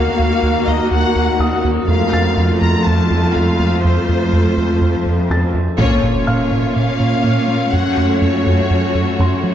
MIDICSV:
0, 0, Header, 1, 10, 480
1, 0, Start_track
1, 0, Key_signature, -5, "minor"
1, 0, Tempo, 487805
1, 1854, Time_signature, 4, 2, 24, 8
1, 9392, End_track
2, 0, Start_track
2, 0, Title_t, "Felt piano"
2, 0, Program_c, 0, 0
2, 0, Control_c, 0, 64, 127
2, 0, Note_on_c, 0, 85, 40
2, 378, Note_off_c, 0, 85, 0
2, 1381, Note_on_c, 0, 87, 40
2, 1873, Control_c, 0, 64, 0
2, 2023, Control_c, 0, 64, 127
2, 2100, Note_on_c, 0, 93, 51
2, 2778, Note_off_c, 0, 87, 0
2, 3498, Note_off_c, 0, 93, 0
2, 5227, Note_on_c, 0, 93, 37
2, 5667, Note_off_c, 0, 93, 0
2, 5711, Control_c, 0, 64, 0
2, 5863, Control_c, 0, 64, 127
2, 6172, Note_on_c, 0, 89, 40
2, 6173, Note_on_c, 0, 77, 32
2, 7574, Note_off_c, 0, 77, 0
2, 7574, Note_off_c, 0, 89, 0
2, 7632, Control_c, 0, 64, 0
2, 7763, Control_c, 0, 64, 127
2, 9057, Note_on_c, 0, 84, 34
2, 9392, Note_off_c, 0, 84, 0
2, 9392, End_track
3, 0, Start_track
3, 0, Title_t, "Violin section"
3, 0, Program_c, 1, 48
3, 0, Note_on_c, 1, 77, 76
3, 652, Note_off_c, 1, 77, 0
3, 656, Note_on_c, 1, 75, 64
3, 892, Note_on_c, 1, 78, 80
3, 895, Note_off_c, 1, 75, 0
3, 1598, Note_off_c, 1, 78, 0
3, 1843, Note_on_c, 1, 77, 83
3, 2529, Note_off_c, 1, 77, 0
3, 2571, Note_on_c, 1, 82, 74
3, 2805, Note_on_c, 1, 81, 64
3, 2807, Note_off_c, 1, 82, 0
3, 3280, Note_on_c, 1, 77, 69
3, 3289, Note_off_c, 1, 81, 0
3, 3767, Note_off_c, 1, 77, 0
3, 3772, Note_on_c, 1, 72, 65
3, 5419, Note_off_c, 1, 72, 0
3, 5687, Note_on_c, 1, 73, 73
3, 6611, Note_off_c, 1, 73, 0
3, 6643, Note_on_c, 1, 77, 66
3, 7589, Note_off_c, 1, 77, 0
3, 7594, Note_on_c, 1, 78, 65
3, 8079, Note_on_c, 1, 73, 57
3, 8084, Note_off_c, 1, 78, 0
3, 9262, Note_off_c, 1, 73, 0
3, 9392, End_track
4, 0, Start_track
4, 0, Title_t, "Violin section"
4, 0, Program_c, 2, 48
4, 5691, Note_on_c, 2, 73, 57
4, 5692, Note_on_c, 2, 65, 53
4, 7573, Note_off_c, 2, 65, 0
4, 7611, Note_on_c, 2, 66, 44
4, 9392, Note_off_c, 2, 66, 0
4, 9392, Note_off_c, 2, 73, 0
4, 9392, End_track
5, 0, Start_track
5, 0, Title_t, "Synth drone"
5, 0, Program_c, 3, 95
5, 0, Note_on_c, 3, 58, 61
5, 0, Note_on_c, 3, 63, 62
5, 0, Note_on_c, 3, 66, 65
5, 0, Note_on_c, 3, 70, 64
5, 1819, Note_off_c, 3, 66, 0
5, 1819, Note_off_c, 3, 70, 0
5, 1820, Note_off_c, 3, 58, 0
5, 1859, Note_off_c, 3, 63, 0
5, 1859, Note_on_c, 3, 69, 62
5, 1862, Note_on_c, 3, 60, 62
5, 1863, Note_on_c, 3, 65, 62
5, 5693, Note_off_c, 3, 65, 0
5, 5696, Note_off_c, 3, 69, 0
5, 5698, Note_off_c, 3, 60, 0
5, 5701, Note_on_c, 3, 61, 73
5, 5701, Note_on_c, 3, 73, 73
5, 5703, Note_on_c, 3, 58, 76
5, 5705, Note_on_c, 3, 65, 77
5, 7579, Note_off_c, 3, 58, 0
5, 7580, Note_off_c, 3, 65, 0
5, 7609, Note_on_c, 3, 66, 55
5, 7613, Note_on_c, 3, 57, 55
5, 9392, Note_off_c, 3, 57, 0
5, 9392, Note_off_c, 3, 61, 0
5, 9392, Note_off_c, 3, 66, 0
5, 9392, Note_off_c, 3, 73, 0
5, 9392, End_track
6, 0, Start_track
6, 0, Title_t, "Viola section"
6, 0, Program_c, 4, 48
6, 0, Note_on_c, 4, 58, 55
6, 0, Note_on_c, 4, 66, 51
6, 1818, Note_off_c, 4, 58, 0
6, 1818, Note_off_c, 4, 66, 0
6, 1850, Note_on_c, 4, 57, 59
6, 1852, Note_on_c, 4, 65, 59
6, 5456, Note_off_c, 4, 57, 0
6, 5457, Note_off_c, 4, 65, 0
6, 5690, Note_on_c, 4, 58, 56
6, 5690, Note_on_c, 4, 61, 55
6, 7573, Note_off_c, 4, 58, 0
6, 7610, Note_on_c, 4, 57, 43
6, 9392, Note_off_c, 4, 57, 0
6, 9392, Note_off_c, 4, 61, 0
6, 9392, End_track
7, 0, Start_track
7, 0, Title_t, "Cello section"
7, 0, Program_c, 5, 48
7, 0, Note_on_c, 5, 39, 51
7, 1814, Note_off_c, 5, 39, 0
7, 1851, Note_on_c, 5, 41, 56
7, 5456, Note_off_c, 5, 41, 0
7, 5690, Note_on_c, 5, 46, 60
7, 7573, Note_off_c, 5, 46, 0
7, 7610, Note_on_c, 5, 42, 47
7, 9392, Note_off_c, 5, 42, 0
7, 9392, End_track
8, 0, Start_track
8, 0, Title_t, "Analog synth bass"
8, 0, Program_c, 6, 38
8, 189, Note_on_c, 6, 39, 46
8, 328, Note_off_c, 6, 39, 0
8, 423, Note_on_c, 6, 39, 57
8, 564, Note_off_c, 6, 39, 0
8, 664, Note_on_c, 6, 39, 55
8, 805, Note_off_c, 6, 39, 0
8, 896, Note_on_c, 6, 39, 69
8, 1039, Note_off_c, 6, 39, 0
8, 1136, Note_on_c, 6, 39, 52
8, 1279, Note_off_c, 6, 39, 0
8, 1373, Note_on_c, 6, 39, 53
8, 1517, Note_off_c, 6, 39, 0
8, 1618, Note_on_c, 6, 39, 58
8, 1761, Note_off_c, 6, 39, 0
8, 1852, Note_on_c, 6, 41, 74
8, 1996, Note_off_c, 6, 41, 0
8, 2095, Note_on_c, 6, 41, 48
8, 2238, Note_off_c, 6, 41, 0
8, 2333, Note_on_c, 6, 41, 58
8, 2477, Note_off_c, 6, 41, 0
8, 2573, Note_on_c, 6, 41, 54
8, 2717, Note_off_c, 6, 41, 0
8, 2820, Note_on_c, 6, 41, 65
8, 2962, Note_off_c, 6, 41, 0
8, 3055, Note_on_c, 6, 41, 51
8, 3199, Note_off_c, 6, 41, 0
8, 3304, Note_on_c, 6, 41, 51
8, 3445, Note_off_c, 6, 41, 0
8, 3541, Note_on_c, 6, 41, 54
8, 3683, Note_off_c, 6, 41, 0
8, 3785, Note_on_c, 6, 41, 67
8, 3926, Note_off_c, 6, 41, 0
8, 4024, Note_on_c, 6, 41, 46
8, 4165, Note_off_c, 6, 41, 0
8, 4259, Note_on_c, 6, 41, 55
8, 4401, Note_off_c, 6, 41, 0
8, 4502, Note_on_c, 6, 41, 54
8, 4644, Note_off_c, 6, 41, 0
8, 4738, Note_on_c, 6, 41, 67
8, 4880, Note_off_c, 6, 41, 0
8, 4979, Note_on_c, 6, 41, 51
8, 5122, Note_off_c, 6, 41, 0
8, 5217, Note_on_c, 6, 41, 50
8, 5360, Note_off_c, 6, 41, 0
8, 5453, Note_on_c, 6, 41, 51
8, 5597, Note_off_c, 6, 41, 0
8, 5690, Note_on_c, 6, 46, 96
8, 5835, Note_off_c, 6, 46, 0
8, 5934, Note_on_c, 6, 46, 49
8, 6078, Note_off_c, 6, 46, 0
8, 6180, Note_on_c, 6, 46, 50
8, 6322, Note_off_c, 6, 46, 0
8, 6414, Note_on_c, 6, 46, 72
8, 6558, Note_off_c, 6, 46, 0
8, 6653, Note_on_c, 6, 46, 48
8, 6797, Note_off_c, 6, 46, 0
8, 6889, Note_on_c, 6, 46, 50
8, 7035, Note_off_c, 6, 46, 0
8, 7126, Note_on_c, 6, 46, 69
8, 7272, Note_off_c, 6, 46, 0
8, 7362, Note_on_c, 6, 58, 50
8, 7510, Note_off_c, 6, 58, 0
8, 7608, Note_on_c, 6, 42, 72
8, 7753, Note_off_c, 6, 42, 0
8, 7845, Note_on_c, 6, 42, 45
8, 7991, Note_off_c, 6, 42, 0
8, 8087, Note_on_c, 6, 42, 58
8, 8233, Note_off_c, 6, 42, 0
8, 8329, Note_on_c, 6, 42, 73
8, 8474, Note_off_c, 6, 42, 0
8, 8567, Note_on_c, 6, 42, 48
8, 8713, Note_off_c, 6, 42, 0
8, 8807, Note_on_c, 6, 42, 47
8, 8953, Note_off_c, 6, 42, 0
8, 9048, Note_on_c, 6, 42, 72
8, 9193, Note_off_c, 6, 42, 0
8, 9286, Note_on_c, 6, 54, 50
8, 9392, Note_off_c, 6, 54, 0
8, 9392, End_track
9, 0, Start_track
9, 0, Title_t, "Impact"
9, 0, Program_c, 7, 103
9, 5692, Note_on_c, 7, 60, 51
9, 7613, Note_off_c, 7, 60, 0
9, 9392, End_track
10, 0, Start_track
10, 0, Title_t, "Taiko and cinematic ensemble drums"
10, 5692, Note_on_c, 9, 41, 50
10, 5791, Note_off_c, 9, 41, 0
10, 9392, End_track
0, 0, End_of_file